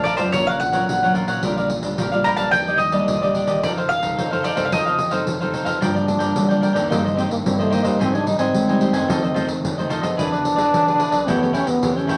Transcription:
Already playing: A#1 F2 F3 A3 D4
0.04 A#4 D5 F5 A5, pandeiro
0.17 F2 F#3 C#4 F4 C5 D5 F5 A5, pandeiro
0.32 A#1 A#2 F4 A#4 C#5 F#5, pandeiro
0.47 A#4 C#5 F5 F#5, pandeiro
0.60 F#5, muted cavaquinho stroke, pandeiro
0.72 F#3 C#4 F4 A#4 C#5 F#5, pandeiro
0.89 A#1 A#2, pandeiro
1.02 F#3 C#4 F4 A#4 C#5 F#5, pandeiro
1.14 F4 A#4 C#5 F#5, pandeiro
1.27 A#2 A#4 C#5 F#5, pandeiro
1.43 A#1 A#2 G3 D4 F4 G4 A#4 D5 F5, pandeiro
1.57 A#4 D5 F5, pandeiro
1.69 muted cavaquinho stroke, pandeiro
1.82 D2 G3 D4 F4, pandeiro
1.98 A#1 A#2 G4 A#4 D5 F5, pandeiro
2.12 G3 D4 F4 A#4 D5 F5, pandeiro
2.24 G4 A#4 D5 F5 A#5, pandeiro
2.36 A#1 G3 A#3 D4 A#4 D5 F5 A5, pandeiro
2.51 D#2 D#3 D4 G4 D5 D#5 G5, pandeiro
2.67 G4 D5 D#5, pandeiro
2.78 D#5, muted cavaquinho stroke, pandeiro
2.92 G3 A#3 D4 G4 D5 D#5, pandeiro
3.08 D#2 A#2, pandeiro
3.22 G3 A#3 D4 G4 D5 D#5, pandeiro
3.34 D4 G4 D5 D#5, pandeiro
3.47 D#3 G4 D5 D#5, pandeiro
3.63 F2 F3 C4 D#4 A4 C5 D5 F5, pandeiro
3.77 A4 C5 F5, pandeiro
3.89 F5, muted cavaquinho stroke, pandeiro
4.01 C2 C4 D#4 A4, pandeiro
4.17 F2 C3 D#4 A4 C5 F5, pandeiro
4.31 C4 D#4 A4 C5 F5, pandeiro
4.43 D#4 A4 C5 D5 F5, pandeiro
4.55 C2 C4 D#4 A4 C5 F5, pandeiro
4.65 F5
4.71 F2 F3 C4 D#4 A4 C5 D#5 F5, pandeiro
4.85 A4 C5 F5, pandeiro
4.98 muted cavaquinho stroke, pandeiro
5.11 C4 D#4 A4 C5 F5, pandeiro
5.27 F2 C3, pandeiro
5.40 C4 D#4 A4 C5 F5, pandeiro
5.53 D#4 A4 C5 F5, pandeiro
5.65 F2 A4 C5 F5, pandeiro
5.81 G2 F3 A#3 D4 F4 A#4 D5 G5, pandeiro
5.94 A#4 D5 G5, pandeiro
6.06 F3 A#3 D4, muted cavaquinho stroke, pandeiro
6.19 G2 A#4 D5 G5, pandeiro
6.36 D3 G3, pandeiro
6.49 F3 A#3 D4 A#4 D5 G5, pandeiro
6.61 F4 A#4 D5 G5, pandeiro
6.73 D2 D#3 A#3 C4 A#4 D5 G5, pandeiro
6.89 G2 A#3 D#4 G4 C5 D#5, pandeiro
7.04 G4 C5 D#5, pandeiro
7.15 D#3 A#3 C4 D#4 G4 C5 D#5, pandeiro
7.29 G2 A#3, muted cavaquinho stroke, pandeiro
7.44 G2 C4, pandeiro
7.59 D#3 A3 A#3 C4 G4 C5 D#5, pandeiro
7.70 A#3 D#4 G4 C5 D#5, pandeiro
7.83 F2 G3 C4 D#4 G4 C5 D#5, pandeiro
7.99 G#2 C4 G4 C5 D#5 G#5, pandeiro
8.14 D4 C5 D#5 G#5, pandeiro
8.26 G3 C4 D#4, muted cavaquinho stroke, pandeiro
8.39 G#2 C4 C5 D#5 G#5, pandeiro
8.54 D#3 G#3, pandeiro
8.68 G3 C4 D#4 C5 D#5 G#5, pandeiro
8.80 G4 C5 D#5 G#5, pandeiro
8.93 F#2 D#3 A3 C4 C5 D#5 G#5, pandeiro
9.08 F2 F4 A4 C5 D#5, pandeiro
9.23 A4 C5 D#5, pandeiro
9.34 D#3 A3 C4 F4 A4 C5 D#5, pandeiro
9.47 F2, muted cavaquinho stroke, pandeiro
9.64 F2 C3, pandeiro
9.78 D#3 A3 C4 A4 C5 D#5, pandeiro
9.89 F4 A4 C5 D#5, pandeiro
10.01 F3 B3 D4 G#4 A4 C5 D#5, pandeiro
10.17 E2 E3 D4 E4 G#4 B4 D5, pandeiro
10.31 G#4 B4 D5, pandeiro
10.44 muted cavaquinho stroke, pandeiro
10.56 E2 B3 D4 G#4 B4 D5, pandeiro
10.73 B2 E3, pandeiro
10.86 B3 D4 G#4 B4 D5, pandeiro
10.98 E4 G#4 B4 D5, pandeiro
11.11 B1 G#4 B4 D5, pandeiro
11.27 E2 E3 A3 B3 C#4 E4 G4 A4 C#5 G5, pandeiro
11.41 A3 C#4 G4 A4 C#5 G5, pandeiro
11.53 C#4 E4 A4 C#5 G5, pandeiro
11.67 E2 B3, muted cavaquinho stroke, pandeiro
11.83 E2 E3 A3 C#4 G4, pandeiro
11.96 C#4 A4 C#5 G5, pandeiro
12.07 E4 A4 C#5 G5, pandeiro

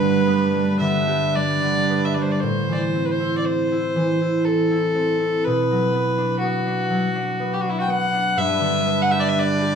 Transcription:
Already playing: G2 G3 A3 D4 A4 B4
0.01 D3
0.27 B3
0.54 G3
0.80 D3 E5
1.07 G4
1.35 G3 D5
1.63 D3
1.89 B3
2.05 E5
2.14 G3 D5
2.22 C5
2.31 D5
2.40 A2 C5
2.69 E3 D5
2.75 C5
2.94 C4
3.06 B4
3.11 C5
3.20 E4
3.38 D5
3.45 C4 C5
3.72 E4
3.96 E3
4.22 E4
4.46 C4 A4
4.71 E4
4.95 C4
5.20 E4
5.44 B2 B4
5.71 F#3
5.95 B3
6.18 D4
6.39 B3 F#4
6.66 D4
6.90 F#3
7.15 D4
7.40 B3
7.53 G4
7.61 D4 F#4
7.69 E4
7.79 F#4 G5
7.88 B3 F#5
8.13 D4
8.36 G2 B4 E5
8.41 G3 D4
8.61 D3
8.86 B3
9.02 F#5
9.11 G4 E5
9.21 D5
9.29 E5
9.36 D4 D5
9.60 G4

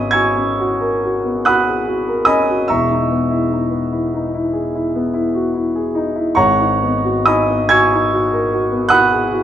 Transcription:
Already playing: G#1 G#2 B3 C#4 F#4 C#5 D#5 F#5 G#5 A#5 B5 C#6 D#6
0.11 F#4 G#5 C#6 E6 G#6
0.37 C#4
0.60 F#4
0.81 A#4
1.05 F#4
1.25 B3
1.45 F#4 F#5 B5 D#6 F#6
1.67 G#4
1.87 F#4
2.08 A#4
2.25 C#4 D#5 G#5 B5 D#6
2.50 F#4
2.68 E1 E2 E5 A#5 C#6 E6
2.91 D#4
3.11 B3
3.30 E4
3.51 D#4
3.70 B3
3.93 E4
4.14 D#4
4.34 E4
4.53 G#4
4.75 E4
4.96 B3
5.14 E4
5.35 F#4
5.54 E4
5.75 G#4
5.95 D#4
6.16 E4
6.35 G#1 G#2 C#5 F#5 A#5 C#6
6.60 D#4
6.83 B3
7.04 F#4
7.26 D#4 D#5 G#5 B5 D#6
7.50 B3
7.69 F#4 G#5 C#6 E6 G#6
7.93 D#4
8.13 F#4
8.33 A#4
8.53 F#4
8.71 B3
8.89 F#4 F#5 B5 D#6 F#6
9.11 G#4
9.33 F#4

